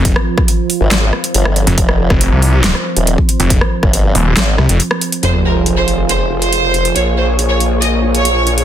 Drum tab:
HH |x---x-o-x--xx-xx|x---x-o-x--xx-xx|x---x-o-x--xx-xx|x---x-x-x--xx-xx|
CP |--------x-------|--------x-------|--------x-------|----------------|
SD |-r-r----o-r--r--|-r-r----or------|-r-r----o-r--r--|----------------|
BD |o--o------------|o--o---------o--|o--o------------|----------------|

HH |x---x-x-x--xx-xx|
CP |----------------|
SD |----------------|
BD |----------------|